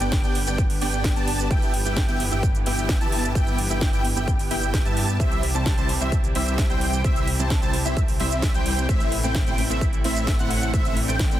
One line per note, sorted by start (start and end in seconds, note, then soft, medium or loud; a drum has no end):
0.00 0.21 G1 loud
0.00 1.47 D3 medium
0.00 1.47 G3 medium
0.00 5.16 B3 medium
0.00 0.20 B3 medium
0.00 0.20 D4 medium
0.00 8.85 G4 medium
0.00 0.20 G4 medium
0.00 0.20 D5 medium
0.00 0.20 G5 medium
0.00 closed hi-hat soft
0.00 shaker medium
0.12 kick loud
0.12 snare loud
0.12 closed hi-hat medium
0.12 shaker medium
0.24 0.45 G1 loud
0.24 0.38 B3 medium
0.24 0.38 D4 medium
0.24 0.38 G4 medium
0.24 0.38 D5 medium
0.24 0.38 G5 loud
0.24 closed hi-hat soft
0.24 shaker soft
0.35 open hi-hat loud
0.47 0.79 G1 loud
0.47 0.61 B3 medium
0.47 0.61 D4 medium
0.47 0.61 G4 medium
0.47 0.61 D5 medium
0.47 0.61 G5 loud
0.47 shaker medium
0.58 kick loud
0.58 closed hi-hat medium
0.58 shaker medium
0.70 open hi-hat medium
0.70 shaker soft
0.81 1.14 G1 loud
0.81 1.13 B3 medium
0.81 1.13 D4 medium
0.81 1.13 G4 medium
0.81 1.13 D5 medium
0.81 1.13 G5 medium
0.81 1.13 G5 loud
0.81 open hi-hat loud
0.93 closed hi-hat soft
0.93 shaker medium
1.04 kick loud
1.04 snare loud
1.04 closed hi-hat medium
1.04 shaker medium
1.16 1.48 G1 loud
1.16 1.48 B3 medium
1.16 1.48 D4 medium
1.16 1.48 G4 medium
1.16 1.48 D5 medium
1.16 1.48 A5 loud
1.16 closed hi-hat soft
1.16 shaker soft
1.28 open hi-hat loud
1.39 closed hi-hat soft
1.39 shaker medium
1.51 1.83 G1 medium
1.51 5.16 E3 medium
1.51 8.85 G3 medium
1.51 1.74 B3 loud
1.51 1.74 E4 medium
1.51 1.74 G4 loud
1.51 1.74 E5 loud
1.51 1.74 G5 loud
1.51 kick loud
1.51 closed hi-hat medium
1.51 shaker medium
1.62 closed hi-hat soft
1.62 shaker soft
1.74 open hi-hat loud
1.85 2.06 G1 medium
1.85 2.05 B3 medium
1.85 2.05 E4 medium
1.85 2.05 G4 medium
1.85 2.05 E5 medium
1.85 2.05 G5 medium
1.85 closed hi-hat soft
1.85 shaker medium
1.97 kick loud
1.97 snare loud
1.97 closed hi-hat medium
1.97 shaker medium
2.08 2.29 G1 loud
2.08 2.23 B3 medium
2.08 2.23 E4 medium
2.08 2.23 G4 medium
2.08 2.23 E5 medium
2.08 2.23 G5 loud
2.08 closed hi-hat soft
2.08 shaker soft
2.20 open hi-hat loud
2.31 2.64 G1 loud
2.31 2.46 B3 medium
2.31 2.46 E4 medium
2.31 2.46 G4 medium
2.31 2.46 E5 medium
2.31 2.46 G5 loud
2.31 closed hi-hat soft
2.31 shaker medium
2.43 kick loud
2.43 closed hi-hat medium
2.43 shaker medium
2.55 closed hi-hat soft
2.55 shaker soft
2.66 2.98 G1 loud
2.66 2.98 B3 medium
2.66 2.98 E4 medium
2.66 2.98 G4 medium
2.66 2.98 E5 medium
2.66 2.98 G5 medium
2.66 open hi-hat loud
2.78 closed hi-hat soft
2.78 shaker medium
2.89 kick loud
2.89 snare loud
2.89 closed hi-hat medium
2.89 shaker medium
3.01 3.33 G1 loud
3.01 3.33 B3 medium
3.01 3.33 E4 medium
3.01 3.33 G4 medium
3.01 3.33 E5 medium
3.01 3.32 A5 loud
3.01 3.33 A5 loud
3.01 closed hi-hat soft
3.01 shaker soft
3.12 open hi-hat loud
3.24 closed hi-hat soft
3.24 shaker medium
3.35 3.68 G1 loud
3.35 3.58 B3 loud
3.35 3.58 E4 medium
3.35 3.58 G4 medium
3.35 3.58 E5 medium
3.35 3.58 G5 loud
3.35 kick loud
3.35 closed hi-hat medium
3.35 shaker medium
3.47 closed hi-hat soft
3.47 shaker soft
3.58 open hi-hat loud
3.70 3.91 G1 loud
3.70 3.90 B3 medium
3.70 3.90 E4 medium
3.70 3.90 G4 medium
3.70 3.90 E5 medium
3.70 3.89 G5 medium
3.70 3.90 G5 medium
3.70 shaker medium
3.81 kick loud
3.81 snare loud
3.81 closed hi-hat medium
3.81 shaker medium
3.93 4.14 G1 loud
3.93 4.07 B3 medium
3.93 4.07 E4 medium
3.93 4.07 G4 medium
3.93 4.07 E5 medium
3.93 4.07 G5 loud
3.93 closed hi-hat soft
3.93 shaker soft
4.05 open hi-hat loud
4.16 4.48 G1 loud
4.16 4.30 B3 loud
4.16 4.30 E4 medium
4.16 4.30 G4 medium
4.16 4.30 E5 medium
4.16 4.30 G5 loud
4.16 shaker medium
4.28 kick loud
4.28 closed hi-hat medium
4.28 shaker medium
4.39 open hi-hat medium
4.39 shaker soft
4.50 4.83 G1 loud
4.50 4.83 B3 medium
4.50 4.82 E4 medium
4.50 4.83 G4 medium
4.50 4.82 E5 medium
4.50 4.82 G5 medium
4.50 4.82 G5 loud
4.50 open hi-hat loud
4.63 shaker medium
4.74 kick loud
4.74 snare loud
4.74 closed hi-hat medium
4.74 shaker medium
4.85 5.18 G2 loud
4.85 5.17 B3 medium
4.85 5.17 E4 medium
4.85 5.17 G4 medium
4.85 5.17 E5 medium
4.85 5.17 A5 loud
4.85 closed hi-hat soft
4.85 shaker soft
4.97 open hi-hat loud
5.09 closed hi-hat soft
5.09 shaker medium
5.20 5.52 C2 loud
5.20 11.40 E3 medium
5.20 5.43 G3 loud
5.20 5.43 C4 loud
5.20 8.85 C4 medium
5.20 5.43 E4 loud
5.20 5.43 C5 loud
5.20 5.43 E5 loud
5.20 kick loud
5.20 closed hi-hat medium
5.20 shaker medium
5.32 closed hi-hat soft
5.32 shaker soft
5.43 open hi-hat loud
5.54 5.75 C2 medium
5.54 5.74 G3 medium
5.54 5.74 C4 medium
5.54 5.74 E4 medium
5.54 5.74 C5 medium
5.54 5.74 A5 medium
5.54 closed hi-hat soft
5.54 shaker medium
5.66 kick loud
5.66 snare loud
5.66 closed hi-hat medium
5.66 shaker medium
5.78 5.98 C2 loud
5.78 5.92 G3 medium
5.78 5.92 C4 medium
5.78 5.92 E4 medium
5.78 5.92 C5 medium
5.78 5.92 A5 loud
5.78 closed hi-hat soft
5.78 shaker soft
5.89 open hi-hat loud
6.01 6.33 C2 loud
6.01 6.15 G3 loud
6.01 6.15 C4 medium
6.01 6.15 E4 medium
6.01 6.15 C5 medium
6.01 6.15 E5 loud
6.01 closed hi-hat soft
6.01 shaker medium
6.12 kick loud
6.12 closed hi-hat medium
6.12 shaker medium
6.24 closed hi-hat soft
6.24 shaker soft
6.35 6.68 C2 loud
6.35 6.67 G3 medium
6.35 6.67 C4 medium
6.35 6.67 E4 medium
6.35 6.67 C5 medium
6.35 6.67 E5 medium
6.35 open hi-hat loud
6.47 closed hi-hat soft
6.47 shaker medium
6.58 kick loud
6.58 snare loud
6.58 closed hi-hat medium
6.58 shaker medium
6.70 7.02 C2 loud
6.70 7.02 G3 medium
6.70 7.02 C4 medium
6.70 7.02 E4 medium
6.70 7.02 C5 medium
6.70 7.02 G5 loud
6.70 closed hi-hat soft
6.70 shaker soft
6.81 open hi-hat loud
6.94 shaker medium
7.04 7.37 C2 loud
7.04 7.27 G3 loud
7.04 7.27 C4 loud
7.04 7.27 E4 loud
7.04 7.27 C5 loud
7.04 7.27 E5 loud
7.04 kick loud
7.04 closed hi-hat medium
7.04 shaker medium
7.16 closed hi-hat soft
7.16 shaker soft
7.28 open hi-hat loud
7.39 7.60 C2 medium
7.39 7.59 G3 medium
7.39 7.59 C4 medium
7.39 7.59 E4 medium
7.39 7.59 C5 medium
7.39 7.59 A5 medium
7.39 shaker medium
7.50 kick loud
7.50 snare loud
7.50 closed hi-hat medium
7.50 shaker medium
7.62 7.83 C2 loud
7.62 7.76 G3 medium
7.62 7.76 C4 medium
7.62 7.76 E4 medium
7.62 7.76 C5 medium
7.62 7.76 A5 loud
7.62 closed hi-hat soft
7.62 shaker soft
7.73 open hi-hat loud
7.85 8.18 C2 loud
7.85 8.00 G3 loud
7.85 8.00 C4 medium
7.85 8.00 E4 medium
7.85 8.00 C5 medium
7.85 8.00 E5 loud
7.85 shaker medium
7.97 kick loud
7.97 closed hi-hat medium
7.97 shaker medium
8.08 open hi-hat medium
8.08 shaker soft
8.20 8.52 C2 loud
8.20 8.52 G3 medium
8.20 8.52 C4 medium
8.20 8.52 E4 medium
8.20 8.52 C5 medium
8.20 8.52 E5 medium
8.20 open hi-hat loud
8.31 closed hi-hat soft
8.31 shaker medium
8.42 kick loud
8.42 snare loud
8.42 closed hi-hat medium
8.42 shaker medium
8.54 8.87 C2 loud
8.54 8.86 G3 loud
8.54 8.86 C4 medium
8.54 8.86 E4 medium
8.54 8.86 C5 medium
8.54 8.86 G5 loud
8.54 closed hi-hat soft
8.54 shaker soft
8.66 open hi-hat loud
8.77 closed hi-hat soft
8.77 shaker medium
8.89 9.21 A1 loud
8.89 11.40 C3 medium
8.89 11.40 A3 medium
8.89 9.12 A3 loud
8.89 9.12 C4 loud
8.89 10.72 E4 medium
8.89 9.12 E4 medium
8.89 9.12 C5 loud
8.89 9.12 E5 loud
8.89 kick loud
8.89 closed hi-hat medium
8.89 shaker medium
9.00 closed hi-hat soft
9.00 shaker soft
9.12 open hi-hat loud
9.23 9.44 A1 loud
9.23 9.43 A3 medium
9.23 9.43 C4 medium
9.23 9.43 E4 medium
9.23 9.43 C5 medium
9.23 9.43 G5 medium
9.23 closed hi-hat soft
9.23 shaker medium
9.35 kick loud
9.35 snare loud
9.35 closed hi-hat medium
9.35 shaker medium
9.47 9.68 A1 loud
9.47 9.61 A3 medium
9.47 9.61 C4 medium
9.47 9.61 E4 medium
9.47 9.61 C5 medium
9.47 9.61 G5 loud
9.47 closed hi-hat soft
9.47 shaker soft
9.58 open hi-hat loud
9.70 10.02 A1 loud
9.70 9.84 A3 loud
9.70 9.84 C4 medium
9.70 9.84 E4 medium
9.70 9.84 C5 medium
9.70 9.84 E5 loud
9.70 closed hi-hat soft
9.70 shaker medium
9.81 kick loud
9.81 closed hi-hat medium
9.81 shaker medium
9.93 closed hi-hat soft
9.93 shaker soft
10.04 10.37 A1 loud
10.04 10.36 A3 medium
10.04 10.36 C4 medium
10.04 10.36 E4 medium
10.04 10.36 C5 medium
10.04 10.36 E5 medium
10.04 open hi-hat loud
10.17 shaker medium
10.27 kick loud
10.27 snare loud
10.27 closed hi-hat medium
10.27 shaker medium
10.39 10.71 A1 loud
10.39 10.71 A3 medium
10.39 10.71 C4 medium
10.39 10.71 E4 medium
10.39 10.71 C5 medium
10.39 10.71 F#5 loud
10.39 closed hi-hat soft
10.39 shaker soft
10.51 open hi-hat loud
10.62 closed hi-hat soft
10.62 shaker medium
10.74 11.06 A1 loud
10.74 10.97 A3 loud
10.74 10.97 C4 loud
10.74 11.40 D4 medium
10.74 10.97 E4 loud
10.74 10.97 C5 medium
10.74 10.97 E5 loud
10.74 kick loud
10.74 closed hi-hat medium
10.74 shaker medium
10.85 closed hi-hat soft
10.85 shaker soft
10.97 open hi-hat loud
11.08 11.29 A1 loud
11.08 11.28 A3 medium
11.08 11.28 C4 medium
11.08 11.28 E4 medium
11.08 11.28 C5 medium
11.08 11.28 G5 medium
11.08 closed hi-hat soft
11.08 shaker medium
11.19 kick loud
11.19 snare loud
11.19 closed hi-hat medium
11.19 shaker medium
11.31 11.40 A1 loud
11.31 11.40 A3 medium
11.31 11.40 C4 medium
11.31 11.40 E4 medium
11.31 11.40 C5 medium
11.31 11.40 G5 loud
11.31 closed hi-hat soft
11.31 shaker soft